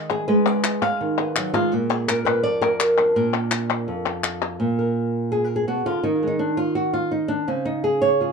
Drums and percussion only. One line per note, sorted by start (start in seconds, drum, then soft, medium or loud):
0.10 clap soft
0.64 clap medium
0.82 clap medium
1.36 clap loud
1.55 clap soft
2.09 clap medium
2.27 clap medium
2.80 clap medium
2.98 clap soft
3.51 clap medium
3.70 clap medium
4.24 clap medium
4.42 clap soft